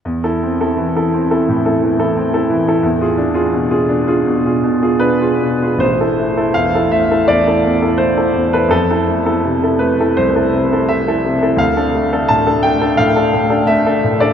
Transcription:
\new Staff \with { instrumentName = "Grand piano" } { \time 4/4 \key a \minor \tempo 4 = 84 << { r1 | r2. b'4 | c''4 f''8 e''8 d''4 c''8. b'16 | a'4. b'8 c''4 e''4 |
f''4 a''8 g''8 f''4 e''8. d''16 | } \\ { e,16 <e' a'>16 c'16 <e' a'>16 e16 <e' a'>16 c'16 <e' a'>16 a,16 <e' a'>16 e16 <e' a'>16 c'16 <e' a'>16 e16 <e' a'>16 | e,16 <f' gis'>16 d'16 <f' gis'>16 b,16 <f' gis'>16 d'16 <f' gis'>16 b,16 <f' gis'>16 b,16 <f' gis'>16 d'16 <f' gis'>16 b,16 <f' gis'>16 | a,,16 <e' a'>16 a16 <e' a'>16 e,16 <e' a'>16 a16 <e' a'>16 e,16 <e' a'>16 e,16 <e' a'>16 a16 <e' a'>16 e,16 <e' a'>16 | f,16 <e' a'>16 a16 <e' a'>16 c16 <e' a'>16 a16 <e' a'>16 c,16 <e' a'>16 c16 <e' a'>16 a16 <e' a'>16 c16 <e' a'>16 |
d,16 <d' a'>16 a16 <d' a'>16 a,16 <d' a'>16 a16 <d' a'>16 a,16 <d' a'>16 a,16 <d' a'>16 a16 <d' a'>16 a,16 <d' a'>16 | } >> }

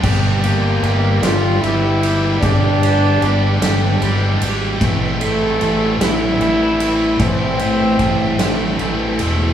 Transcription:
<<
  \new Staff \with { instrumentName = "Trombone" } { \time 6/8 \key g \dorian \tempo 4. = 50 r8 bes4 f'8 e'4 | d'2 r4 | r8 a4 e'4. | c'2 r4 | }
  \new Staff \with { instrumentName = "Distorted electric guitar" } { \time 6/8 \key g \dorian <g bes d' g'>8 <bes d' g'>8 <g bes d' g'>8 <bes d' g'>8 <g bes d' g'>8 <bes d' g'>8 | <g bes d' g'>8 <bes d' g'>8 <g bes d' g'>8 <bes d' g'>8 <g bes d' g'>8 <bes d' g'>8 | <a, e a c' e'>8 <a c' e'>8 <e a c' e'>8 <a c' e'>8 <e a c' e'>8 <a c' e'>8 | <a, e a c' e'>8 <a c' e'>8 <e a c' e'>8 <a c' e'>8 <e a c' e'>8 <a c' e'>8 | }
  \new Staff \with { instrumentName = "Fingered electric bass" } { \clef bass \time 6/8 \key g \dorian g,,4 g,,8 g,,8 g,,4 | g,,4 g,,8 g,,8 g,,8 aes,,8 | a,,4 a,,8 a,,8 a,,4 | a,,4 a,,8 a,,8 a,,8 e,,8 | }
  \new DrumStaff \with { instrumentName = "Drums" } \drummode { \time 6/8 <cymc bd>8 cymr8 cymr8 <cymr sn>8 cymr8 cymr8 | <bd cymr>8 cymr8 cymr8 <cymr sn>8 cymr8 cymr8 | <bd cymr>8 cymr8 cymr8 <cymr sn>8 cymr8 cymr8 | <bd cymr>8 cymr8 <bd cymr>8 <cymr sn>8 cymr8 cymr8 | }
>>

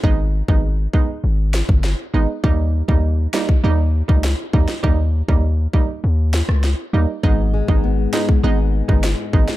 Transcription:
<<
  \new Staff \with { instrumentName = "Synth pluck" } { \time 4/4 \key gis \minor \tempo 4 = 100 <gis b dis'>16 r8 <gis b dis'>16 r8 <gis b dis'>16 r4. r16 <gis b dis'>16 r16 | <g ais dis'>8. <g ais dis'>8. <g ais dis'>8 <g ais dis'>16 r8 <g ais dis'>16 r8 <g ais dis'>16 r16 | <g ais dis'>16 r8 <g ais dis'>16 r8 <g ais dis'>16 r4. r16 <g ais dis'>16 r16 | <gis b dis'>8. <gis b dis'>8. <gis b dis'>8 <gis b dis'>16 r8 <gis b dis'>16 r8 <gis b dis'>16 r16 | }
  \new Staff \with { instrumentName = "Nylon-string guitar" } { \time 4/4 \key gis \minor r1 | r1 | r1 | gis,8 gis8 b4 <gis b dis'>2 | }
  \new Staff \with { instrumentName = "808-style bass" } { \clef bass \time 4/4 \key gis \minor gis,,8. gis,,8. r8 gis,,8. g,,8 r16 gis,,16 r16 | dis,8. dis,8. r8 dis,8. cis,8 r16 dis,16 r16 | dis,8. dis,8. r8 dis,8. cis,8 r16 dis,16 r16 | gis,,8. gis,,8. r8 gis,,8. g,,8 r16 gis,,16 r16 | }
  \new DrumStaff \with { instrumentName = "Drums" } \drummode { \time 4/4 bd8. bd16 r8 bd8 r8 sn16 bd16 sn4 | bd8. bd16 r8 sn16 bd16 r8. bd16 sn8 bd16 sn16 | bd8. bd16 r8 bd8 r8 sn16 ss16 sn4 | bd8. bd16 r8 sn16 bd16 r8. bd16 sn8 bd16 sn16 | }
>>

